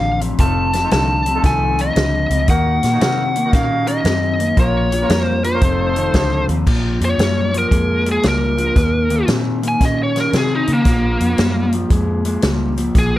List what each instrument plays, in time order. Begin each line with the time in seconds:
Already playing: fingered electric bass A1, clean electric guitar F2 D3, lead electric guitar F5
0.21 clean electric guitar F2 C3, closed hi-hat
0.39 fingered electric bass F1, clean electric guitar F2 C3, horn section A3 D#4 F4 A4, lead electric guitar A5, kick, closed hi-hat
0.73 clean electric guitar F2 C3, snare, closed hi-hat
0.82 horn section A3 D#4 F4 A4
0.91 fingered electric bass C2, clean electric guitar F2 D3, lead electric guitar A5, snare, closed hi-hat
1.26 clean electric guitar F2 C3, closed hi-hat
1.34 horn section A3 D#4 F4 A4
1.43 fingered electric bass C2, clean electric guitar F2 D#3, lead electric guitar G#5, kick, snare, closed hi-hat
1.79 clean electric guitar F2 D#3, lead electric guitar D#5, closed hi-hat
1.96 fingered electric bass C#2, clean electric guitar F2 D3, snare, closed hi-hat
2.30 fingered electric bass C#2, clean electric guitar F2 C3, closed hi-hat
2.48 fingered electric bass D#2, clean electric guitar D#3 A#3, horn section A#3 D#4 F#4 A#4, lead electric guitar F#5, kick, closed hi-hat
2.83 fingered electric bass A#2, clean electric guitar D#3 A#3, snare, closed hi-hat
2.92 horn section A#3 D#4 F#4 A#4
3.01 fingered electric bass C3, clean electric guitar D#3 C4, lead electric guitar F#5, snare, closed hi-hat
3.36 clean electric guitar D#3 A#3, closed hi-hat
3.43 horn section A#3 D#4 F#4 A#4
3.53 fingered electric bass A#2, clean electric guitar D#3 C#4, lead electric guitar F5, kick, snare, closed hi-hat
3.87 clean electric guitar D#3 C#4, lead electric guitar D#5, closed hi-hat
4.05 fingered electric bass F#2, clean electric guitar D#3 C4, snare, closed hi-hat
4.39 clean electric guitar D#3 A#3, closed hi-hat
4.57 fingered electric bass A#1, clean electric guitar A#2 F3, horn section A#3 C#4 F4 A#4, lead electric guitar C#5, kick, closed hi-hat
4.92 clean electric guitar A#2 F3, closed hi-hat
5.01 horn section A#3 C#4 F4 A#4
5.09 fingered electric bass F2, clean electric guitar A#2 G3, snare, closed hi-hat
5.21 lead electric guitar C5
5.44 clean electric guitar A#2 F3, lead electric guitar C5, closed hi-hat
5.53 horn section A#3 C#4 F4 A#4
5.62 fingered electric bass F1, clean electric guitar F2 C3, horn section A3 D#4 F4 A4, kick, closed hi-hat
5.96 clean electric guitar F2 D#3, closed hi-hat
6.14 fingered electric bass C#2, clean electric guitar F2 D3, kick, snare, closed hi-hat
6.48 fingered electric bass D#2, clean electric guitar F2 C3, closed hi-hat
6.66 fingered electric bass A#1, clean electric guitar A#2 F3, kick, crash
7.01 fingered electric bass F2, clean electric guitar A#2 F3, closed hi-hat
7.05 lead electric guitar C#5
7.18 fingered electric bass F#2, clean electric guitar A#2 G3, snare, closed hi-hat
7.53 clean electric guitar A#2 F3, closed hi-hat
7.58 lead electric guitar A#4
7.71 fingered electric bass F2, clean electric guitar A#2 G#3, kick, closed hi-hat
8.06 clean electric guitar A#2 G#3, closed hi-hat
8.12 lead electric guitar G#4
8.23 fingered electric bass C#2, clean electric guitar A#2 G3, snare, closed hi-hat
8.28 lead electric guitar A#4
8.58 clean electric guitar A#2 F3, closed hi-hat
8.76 fingered electric bass D#2, clean electric guitar D#3 A#3, kick, snare, closed hi-hat
9.10 clean electric guitar D#3 A#3, closed hi-hat
9.28 fingered electric bass A#2, clean electric guitar D#3 C4, snare, closed hi-hat
9.63 clean electric guitar D#3 A#3, closed hi-hat
9.68 lead electric guitar G#5
9.81 fingered electric bass A#2, clean electric guitar D#3 C#4, kick, snare, closed hi-hat
9.85 lead electric guitar D#5
10.03 lead electric guitar C#5
10.16 clean electric guitar D#3 C#4, snare, closed hi-hat
10.20 lead electric guitar A#4
10.33 fingered electric bass C3, clean electric guitar D#3 C4, snare, closed hi-hat
10.37 lead electric guitar G#4
10.56 lead electric guitar D#4
10.67 fingered electric bass C#3, clean electric guitar D#3 A#3, closed hi-hat
10.73 lead electric guitar A#3
10.85 fingered electric bass A#1, clean electric guitar A#2 F3, kick, snare, closed hi-hat
11.20 fingered electric bass F2, clean electric guitar A#2 F3, closed hi-hat
11.38 fingered electric bass F#2, clean electric guitar A#2 G3, snare, closed hi-hat
11.72 clean electric guitar A#2 F3, closed hi-hat
11.90 fingered electric bass F2, clean electric guitar A#2 G#3, kick, closed hi-hat
12.25 clean electric guitar A#2 G#3, closed hi-hat
12.42 fingered electric bass C#2, clean electric guitar A#2 G3, snare, closed hi-hat
12.77 clean electric guitar A#2 F3, closed hi-hat
12.95 fingered electric bass A#1, clean electric guitar A#2 F3, lead electric guitar G#4, kick, snare, closed hi-hat